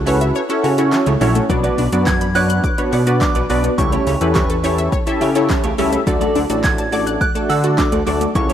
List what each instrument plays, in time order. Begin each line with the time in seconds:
Already playing: analog synth bass C#2, synth bell F#6
0.06 analog polysynth C#4 E4 F#4 A4 B4, clean electric guitar E4 A4 C#5, synth arpeggio sound C#5, open hi-hat, shaker
0.21 synth arpeggio sound E5, muted clean electric guitar stroke, closed hi-hat, shaker
0.35 synth arpeggio sound C#5, muted clean electric guitar stroke, shaker
0.49 analog polysynth C#4 E4 F#4 A4 C#5, synth arpeggio sound A4, muted clean electric guitar stroke, closed hi-hat, shaker
0.63 analog synth bass C#3, clean electric guitar E4 A4 C#5, synth arpeggio sound F#4, open hi-hat, shaker
0.78 analog polysynth C#4 E4 F#4 A4 C#5, synth arpeggio sound E4, muted clean electric guitar stroke, closed hi-hat, shaker
0.92 synth arpeggio sound C#4, muted clean electric guitar stroke, snare, clap, shaker
1.06 analog synth bass C#2, synth arpeggio sound A3, clean electric guitar E4 A4 C#5, closed hi-hat, shaker
1.20 analog synth bass A#1, synth arpeggio sound F#3, analog polysynth C#4 E4 F#4 A4 C#5, clean electric guitar E4 A4 C#5, open hi-hat, shaker
1.35 synth arpeggio sound A3, muted clean electric guitar stroke, closed hi-hat, shaker
1.49 analog synth bass B1, synth arpeggio sound F#3, analog polysynth B3 D4 F#4 B4 D5, muted clean electric guitar stroke, kick, shaker
1.63 synth arpeggio sound B3, clean electric guitar F#4 B4 D5, closed hi-hat, shaker
1.78 analog synth bass B1, synth arpeggio sound D4, clean electric guitar F#4 B4 D5, open hi-hat, shaker
1.92 analog synth bass F#2, analog polysynth B3 D4 F#4 B4 D5, muted clean electric guitar stroke, closed hi-hat, shaker
2.06 synth arpeggio sound F#5, synth bell G#6, muted clean electric guitar stroke, kick, snare, clap, shaker
2.21 synth arpeggio sound B5, muted clean electric guitar stroke, closed hi-hat, shaker
2.35 analog polysynth B3 D4 F#4 B4 C#5, clean electric guitar F#4 B4 D5, synth arpeggio sound D6, synth bell F#6, open hi-hat, shaker
2.49 synth arpeggio sound F#6, muted clean electric guitar stroke, closed hi-hat, shaker
2.64 synth arpeggio sound D6, muted clean electric guitar stroke, kick, shaker
2.78 analog polysynth B3 D4 F#4 B4 C#5, synth arpeggio sound B5, muted clean electric guitar stroke, closed hi-hat, shaker
2.92 analog synth bass B2, clean electric guitar F#4 B4 D5, synth arpeggio sound F#5, open hi-hat, shaker
3.07 analog polysynth B3 D4 F#4 B4 D5, synth arpeggio sound F#4, muted clean electric guitar stroke, closed hi-hat, shaker
3.21 synth arpeggio sound D4, synth bell D6, muted clean electric guitar stroke, kick, snare, clap, shaker
3.35 analog synth bass B1, synth arpeggio sound B3, clean electric guitar F#4 B4 D5, closed hi-hat, shaker
3.49 analog synth bass B1, synth arpeggio sound F#3, analog polysynth B3 D4 F#4 B4 D5, clean electric guitar F#4 B4 D5, open hi-hat, shaker
3.64 synth arpeggio sound B3, muted clean electric guitar stroke, closed hi-hat, shaker
3.78 analog synth bass C#2, synth arpeggio sound G3, analog polysynth C#4 E4 G4 A4 C#5, synth bell C#6, muted clean electric guitar stroke, kick, shaker
3.92 synth arpeggio sound A3, clean electric guitar E4 G4 C#5, closed hi-hat, shaker
4.06 analog synth bass C#2, synth arpeggio sound C#4, clean electric guitar E4 G4 C#5, open hi-hat, shaker
4.21 analog synth bass E2, analog polysynth C#4 E4 G4 A4 B4, closed hi-hat, shaker
4.35 synth arpeggio sound G4, synth bell C#6, muted clean electric guitar stroke, kick, snare, clap, shaker
4.49 synth arpeggio sound A4, muted clean electric guitar stroke, closed hi-hat, shaker
4.64 analog polysynth C#4 E4 G4 A4 C#5, clean electric guitar E4 G4 C#5, synth arpeggio sound C#5, open hi-hat, shaker
4.78 synth arpeggio sound E5, muted clean electric guitar stroke, closed hi-hat, shaker
4.92 synth arpeggio sound C#5, muted clean electric guitar stroke, kick, shaker
5.07 analog polysynth C#4 E4 G4 A4 E5, synth arpeggio sound A4, muted clean electric guitar stroke, closed hi-hat, shaker
5.21 analog synth bass C#3, clean electric guitar E4 G4 C#5, synth arpeggio sound G4, open hi-hat, shaker
5.35 analog polysynth C#4 E4 G4 A4 C#5, synth arpeggio sound E4, muted clean electric guitar stroke, closed hi-hat, shaker
5.49 synth arpeggio sound C#4, muted clean electric guitar stroke, kick, snare, clap, shaker
5.64 analog synth bass C#2, synth arpeggio sound A3, clean electric guitar E4 G4 C#5, closed hi-hat, shaker
5.78 analog synth bass C#2, synth arpeggio sound G3, analog polysynth C#4 E4 G4 A4 E5, clean electric guitar E4 G4 C#5, open hi-hat, shaker
5.92 synth arpeggio sound A3, muted clean electric guitar stroke, closed hi-hat, shaker
6.07 analog synth bass D2, synth arpeggio sound F#3, analog polysynth A3 D4 F#4 A4 D5, muted clean electric guitar stroke, kick, shaker
6.21 synth arpeggio sound A3, clean electric guitar F#4 A4 D5, closed hi-hat, shaker
6.35 analog synth bass D2, synth arpeggio sound D4, clean electric guitar F#4 A4 D5, open hi-hat, shaker
6.49 analog synth bass A1, analog polysynth A3 D4 F#4 A4 D5, muted clean electric guitar stroke, closed hi-hat, shaker
6.64 synth arpeggio sound F#5, synth bell G#6, muted clean electric guitar stroke, kick, snare, clap, shaker
6.78 synth arpeggio sound A5, muted clean electric guitar stroke, closed hi-hat, shaker
6.92 analog polysynth A3 D4 F#4 A4 D5, clean electric guitar F#4 A4 D5, synth arpeggio sound D6, open hi-hat, shaker
7.07 synth arpeggio sound F#6, muted clean electric guitar stroke, closed hi-hat, shaker
7.21 synth arpeggio sound D6, synth bell F#6, muted clean electric guitar stroke, kick, shaker
7.35 analog polysynth A3 D4 F#4 A4 D5, synth arpeggio sound A5, muted clean electric guitar stroke, closed hi-hat, shaker
7.49 analog synth bass D3, clean electric guitar F#4 A4 D5, synth arpeggio sound F#5, synth bell E6, open hi-hat, shaker
7.64 analog polysynth A3 D4 F#4 A4 D5, synth arpeggio sound F#4, muted clean electric guitar stroke, closed hi-hat, shaker
7.78 synth arpeggio sound D4, synth bell D6, muted clean electric guitar stroke, kick, snare, clap, shaker
7.92 analog synth bass D2, synth arpeggio sound A3, clean electric guitar F#4 A4 D5, closed hi-hat, shaker
8.06 analog synth bass D2, synth arpeggio sound F#3, analog polysynth A3 D4 F#4 A4 D5, clean electric guitar F#4 A4 D5, open hi-hat, shaker
8.21 synth arpeggio sound A3, muted clean electric guitar stroke, closed hi-hat, shaker
8.35 analog synth bass C#2, synth arpeggio sound F#3, analog polysynth C#4 E4 F#4 A4 C#5, synth bell C#6, muted clean electric guitar stroke, kick, shaker
8.49 synth arpeggio sound A3, clean electric guitar A4 C#5, closed hi-hat, shaker